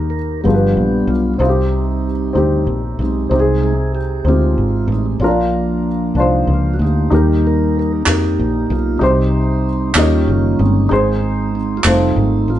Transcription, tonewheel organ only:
0.10 0.41 A#4 medium
0.44 0.87 F3 soft
0.44 1.36 B3 soft
0.44 1.33 D4 soft
0.44 1.10 G4 medium
1.08 1.34 F4 medium
1.34 1.41 D4 soft
1.39 2.36 G3 soft
1.39 2.36 C4 soft
1.39 2.37 D#4 medium
2.37 2.65 G3 soft
2.37 2.65 C4 soft
2.37 2.66 D#4 soft
3.01 3.31 G#3 soft
3.01 3.31 C4 medium
3.01 3.32 D#4 medium
3.32 3.74 G#3 soft
3.32 3.74 C4 soft
3.32 3.74 D#4 soft
3.64 3.93 G#4 medium
3.95 4.27 G4 medium
4.28 5.19 G#3 medium
4.28 5.18 C4 medium
4.28 4.87 F4 medium
4.92 5.06 D#4 medium
5.21 6.77 F3 soft
5.21 6.76 A#3 soft
5.21 6.77 D4 medium
6.22 6.52 D#4 medium
6.54 6.76 F4 medium
6.74 6.80 F#4 soft
6.82 7.12 A#3 soft
6.82 7.12 D#4 soft
6.82 7.47 G4 medium
7.12 8.02 G3 soft
7.12 8.03 A#3 soft
7.12 8.03 D#4 medium
7.47 7.77 A#4 medium
7.79 7.92 A#4 medium
8.08 8.98 A#3 soft
8.08 8.98 D#4 soft
8.08 8.73 G4 medium
8.72 9.00 F4 medium
9.01 9.93 G3 medium
9.01 9.93 C4 medium
9.01 9.93 D#4 medium
9.97 10.87 G3 soft
9.97 10.88 A#3 soft
9.97 10.87 C#4 medium
9.97 10.28 F4 soft
9.97 10.30 G4 medium
10.30 10.61 F4 medium
10.59 10.88 G#3 medium
10.59 10.88 C4 medium
10.59 10.89 D#4 medium
10.89 11.81 G#3 soft
10.89 11.22 C4 soft
10.89 11.81 D#4 medium
11.23 11.52 C4 medium
11.55 11.77 C4 medium
11.77 11.85 F4 medium
11.86 12.28 G3 soft
11.86 12.59 A3 medium
11.86 12.59 C4 medium
11.86 12.52 D#4 medium
12.50 12.59 F4 medium

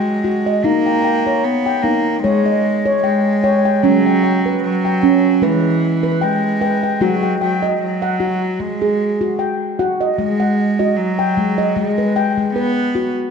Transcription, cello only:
0.00 0.66 G#3 medium
0.64 1.45 A#3 medium
1.44 1.84 B3 medium
1.83 2.23 A#3 medium
2.23 2.99 G#3 medium
3.04 3.86 G#3 medium
3.84 4.62 F#3 medium
4.63 5.45 F#3 medium
5.43 6.24 E3 medium
6.22 7.03 G#3 medium
7.02 7.41 F#3 medium
7.41 7.78 F#3 medium
7.82 8.62 F#3 medium
8.60 9.39 G#3 medium
10.18 10.98 G#3 medium
10.96 11.77 F#3 medium
11.75 12.54 G#3 medium
12.54 13.12 B3 medium

